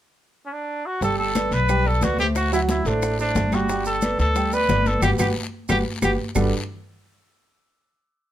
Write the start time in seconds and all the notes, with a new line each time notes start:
0.46 C#4
0.52 D4
0.86 F#4
1.01 G1 G3 G4 A4 G5, high bongo, high conga, long guiro, maracas
1.19 A4, high conga
1.35 B3 B4 D5, high bongo, high conga, short guiro, claves, maracas
1.51 B1 B4, high conga, short guiro, maracas
1.69 G3 G4 G5, high bongo, high conga, long guiro, claves, maracas
1.86 B3 A4 B4 D5, high conga
2.01 D2 B3 F#4 B4 D5, high bongo, low bongo, high conga, short guiro, maracas
2.19 A3 G4 A4 C5, high conga, short guiro, maracas
2.35 F#4, high bongo, high conga, long guiro, claves, maracas
2.52 F#3 E4 F#4 F#5, high bongo, high conga, maracas
2.69 E4, high bongo, high conga, short guiro, maracas
2.85 A1 A3 D4 A4 C5, high bongo, high conga, short guiro, maracas
3.02 high bongo, high conga, long guiro, claves, maracas
3.19 A3 D4 A4 C5, high conga, maracas
3.35 G1, high bongo, low bongo, high conga, short guiro, maracas
3.52 G3 F#4 G4 G5, high bongo, high conga, short guiro, claves, maracas
3.69 G3 G4 G5, high bongo, high conga, long guiro, maracas
3.85 A4, high conga, maracas
4.02 B3 B4 D5, high bongo, high conga, short guiro, claves, maracas
4.19 D2 A4, high conga, short guiro, maracas
4.35 G3 G4 G5, high bongo, high conga, long guiro, claves, maracas
4.52 B3 B4 D5, high conga, maracas
4.69 G1 B3 D5, high bongo, low bongo, high conga, short guiro, maracas
4.85 B3 A4 B4 D5, high conga, short guiro, maracas
5.02 G1 F#4 G4 B4, low bongo, high conga, long guiro, claves, maracas
5.18 G1 F#4 G4 B4, low bongo, high conga, long guiro, claves, maracas
5.69 G1 F#4 G4 B4, low bongo, high conga, long guiro, claves, maracas
6.02 G1 F#4 G4 B4, low bongo, high conga, claves, maracas
6.35 G1 G3 D4 F#4 G4 A4 B4, low bongo, low conga, long guiro, claves, maracas